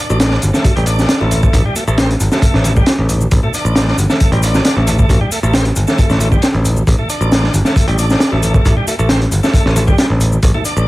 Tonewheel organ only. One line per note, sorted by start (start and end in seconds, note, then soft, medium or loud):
0.00 0.41 D4 medium
0.54 0.75 A3 medium
0.76 0.86 G3 medium
0.87 1.20 D4 medium
1.20 1.42 A3 medium
1.43 1.64 A3 medium
1.65 1.75 G3 medium
1.76 1.84 A3 medium
1.88 1.98 A3 medium
1.98 2.09 C4 medium
2.32 2.64 A3 medium
2.65 2.73 A3 medium
2.77 2.86 G3 medium
2.88 2.92 C4 medium
3.43 3.53 A3 medium
3.54 3.97 D4 medium
4.10 4.31 A3 medium
4.32 4.42 G3 medium
4.43 4.75 D4 medium
4.76 4.97 A3 medium
4.99 5.20 A3 medium
5.21 5.31 G3 medium
5.32 5.40 A3 medium
5.43 5.53 A3 medium
5.54 5.65 C4 medium
5.87 6.19 A3 medium
6.20 6.28 A3 medium
6.32 6.42 G3 medium
6.43 6.48 C4 medium
6.99 7.08 A3 medium
7.09 7.53 D4 medium
7.65 7.86 A3 medium
7.88 7.97 G3 medium
7.99 8.31 D4 medium
8.32 8.53 A3 medium
8.54 8.75 A3 medium
8.77 8.86 G3 medium
8.88 8.95 A3 medium
8.99 9.09 A3 medium
9.10 9.21 C4 medium
9.43 9.75 A3 medium
9.76 9.84 A3 medium
9.87 9.97 G3 medium
9.98 10.06 G3 medium
10.54 10.64 A3 medium
10.65 10.88 D4 medium